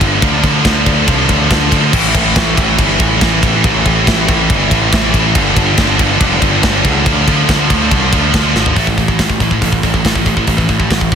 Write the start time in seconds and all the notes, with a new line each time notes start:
0.01 G1, kick, ride
0.06 G2 D3
0.14 G2 D3
0.22 D2 D3 F3, kick, ride
0.31 D3 F3
0.38 D3 F3
0.43 D2 D3, kick, ride
0.47 F3
0.54 D3 F3
0.62 D2 D3 F3, kick, ride
0.66 snare
0.70 D3 F3
0.77 D3 F3
0.84 D2 D3 F3, kick, ride
0.92 D3 F3
1.01 D3 F3
1.08 C2 D3 F3, kick, ride
1.16 D3 F3
1.25 D3 F3
1.29 D2 D3 F3, kick, ride
1.38 D3 F3
1.46 D3 F3
1.51 D2, kick, snare, ride
1.55 D3 F3
1.62 D3 F3
1.69 D2 D3 F3, kick, ride
1.78 D3 F3
1.86 D3 F3
1.93 A1 A2 E3, kick, crash
2.00 A2 E3
2.08 A2 E3
2.15 A1 A2 E3, kick, ride
2.23 A2 E3
2.31 A2 E3
2.36 A1 A2 E3, kick, snare, ride
2.46 A2 E3
2.54 A1 A2 E3, kick
2.58 ride
2.62 A2 E3
2.70 A2 E3
2.78 G1 A2 E3, kick, ride
2.85 A2 E3
2.93 A2 E3
3.00 A1 A2 E3, kick, ride
3.09 A2 E3
3.16 A2 E3
3.21 A1 A2 E3, kick, snare, ride
3.32 A2 E3
3.40 A1 A2 E3, kick, ride
3.48 A2 E3
3.55 A2 E3
3.64 A1 A2 E3, kick, ride
3.72 A2 E3
3.79 A2 E3
3.86 A1 A2 E3, kick, ride
3.95 A2 E3
4.02 A2 E3
4.07 A1, kick, snare, ride
4.11 A2 E3
4.19 A2 E3
4.26 A1 A2 E3, kick, ride
4.33 A2 E3
4.42 A2 E3
4.49 G1 A2 E3, kick, ride
4.57 A2 E3
4.65 A2 E3
4.71 A1 A2 E3, kick, ride
4.80 A2 E3
4.88 A2 E3
4.93 A1 A2, kick, snare, ride
4.97 E3
5.04 A2 E3
5.11 A1 A2 E3, kick, ride
5.19 A2 E3
5.27 A2 E3
5.35 G1 G2 D3, kick, ride
5.42 G2 D3
5.49 G2 D3
5.56 G1 G2 D3, kick, ride
5.65 G2 D3
5.73 G2 D3
5.78 G1 D3, kick, snare, ride
5.82 G2
5.88 G2 D3
5.96 G1 G2 D3, kick, ride
6.04 G2 D3
6.12 G2 D3
6.19 F1 G2 D3, kick, ride
6.27 G2 D3
6.35 G2 D3
6.42 G1 G2 D3, kick, ride
6.51 G2 D3
6.58 G2 D3
6.63 G1, kick, snare, ride
6.67 G2 D3
6.74 G2 D3
6.81 G2 D3, kick, ride
6.85 C#2
6.90 G2 D3
6.97 G2 D3
7.06 D2 D3 F3, kick, ride
7.13 D3 F3
7.21 D3 F3
7.27 D2 D3 F3, kick, ride
7.37 D3 F3
7.45 D2 D3 F3, kick
7.49 D3 F3, snare, ride
7.60 D3 F3
7.68 D2 D3 F3, kick, ride
7.76 D3 F3
7.83 D3 F3
7.91 C2 D3 F3, kick, ride
7.99 D3 F3
8.07 D3 F3
8.13 D2 D3 F3, kick, ride
8.22 D3 F3
8.30 D3 F3
8.34 D2 D3 F3, kick, snare, ride
8.45 D3 F3
8.53 G#1 D3 F3, snare
8.61 D3 F3
8.66 D3 F3, floor tom
8.76 A1 A2 E3 A3, kick, open hi-hat
8.87 A2 E3, kick
8.97 A1 A2 E3, kick, open hi-hat
9.08 A2 E3, kick
9.19 A1 A2 E3, kick, snare, open hi-hat
9.30 kick
9.40 A1 A2 E3, kick, open hi-hat
9.51 A2 E3, kick
9.61 A1 A2 E3, kick, open hi-hat
9.73 kick
9.83 A1 A2 E3, kick, open hi-hat
9.94 A2 E3, kick
10.05 A1 A2 E3, kick, snare, open hi-hat
10.16 A2 E3, kick
10.26 A1 A2 E3, kick, open hi-hat
10.37 A2 E3, kick
10.47 A1 A2 E3, kick, open hi-hat
10.57 A2 E3, kick
10.69 A1 A2 E3, kick, open hi-hat
10.80 A2 E3, kick
10.90 A1 A2 E3, kick, snare, open hi-hat
11.01 kick
11.12 A1, kick, open hi-hat